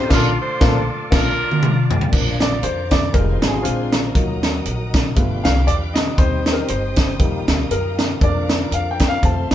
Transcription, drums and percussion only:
0.10 kick loud
0.10 snare loud
0.10 crash medium
0.61 kick loud
0.61 snare loud
1.12 kick loud
1.12 snare loud
1.12 crash medium
1.51 high tom medium
1.63 mid tom medium
1.91 floor tom loud
2.01 floor tom medium
2.13 kick medium
2.13 crash medium
2.40 snare loud
2.40 closed hi-hat medium
2.63 closed hi-hat medium
2.91 kick medium
2.91 snare loud
2.91 closed hi-hat medium
3.14 kick medium
3.14 closed hi-hat medium
3.42 snare loud
3.42 closed hi-hat medium
3.65 closed hi-hat medium
3.93 snare loud
3.93 closed hi-hat medium
4.15 kick medium
4.15 closed hi-hat medium
4.43 snare medium
4.43 closed hi-hat medium
4.66 closed hi-hat medium
4.94 kick medium
4.94 snare loud
4.94 closed hi-hat medium
5.16 kick medium
5.16 closed hi-hat medium
5.45 snare loud
5.45 closed hi-hat medium
5.68 closed hi-hat medium
5.96 snare medium
5.96 closed hi-hat medium
6.18 kick medium
6.18 closed hi-hat medium
6.46 snare medium
6.46 closed hi-hat medium
6.68 closed hi-hat medium
6.96 kick medium
6.96 snare loud
6.96 closed hi-hat medium
7.19 kick loud
7.19 closed hi-hat medium
7.48 snare loud
7.48 closed hi-hat medium
7.71 closed hi-hat medium
7.99 snare medium
7.99 closed hi-hat medium
8.21 kick loud
8.21 closed hi-hat medium
8.49 snare loud
8.49 closed hi-hat medium
8.72 closed hi-hat medium
8.99 kick medium
8.99 snare loud
8.99 closed hi-hat medium
9.23 kick medium
9.23 closed hi-hat medium
9.51 snare loud
9.51 closed hi-hat medium

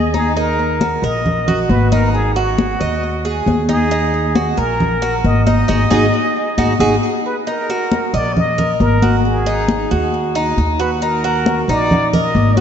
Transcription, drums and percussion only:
0.14 high conga medium
0.36 high conga soft
0.59 high conga soft
0.81 high conga medium
1.03 high conga soft
1.26 high conga soft
1.26 low conga medium
1.48 high conga soft
1.48 low conga medium
1.69 high conga medium
1.92 high conga medium
2.14 high conga soft
2.36 high conga soft
2.58 high conga medium
3.04 high conga soft
3.26 high conga soft
3.47 high conga medium
3.69 high conga medium
3.91 high conga soft
4.13 high conga soft
4.36 high conga medium
4.58 high conga soft
4.80 high conga soft
4.80 low conga medium
5.02 high conga soft
5.24 high conga medium
5.47 high conga medium
5.69 high conga medium
5.91 high conga loud
6.58 high conga medium
6.80 high conga medium
7.47 high conga soft
7.69 high conga soft
7.92 high conga loud
8.15 high conga soft
8.37 high conga soft
8.37 low conga medium
8.59 high conga soft
8.59 low conga medium
8.80 high conga medium
9.02 high conga medium
9.25 high conga soft
9.46 high conga soft
9.68 high conga loud
9.91 high conga soft
10.13 high conga soft
10.35 high conga soft
10.57 high conga soft
10.80 high conga soft
11.02 high conga soft
11.24 high conga soft
11.46 high conga medium
11.69 high conga soft
11.91 high conga soft
11.91 low conga medium
12.13 high conga soft
12.13 low conga medium
12.35 high conga medium
12.57 high conga medium

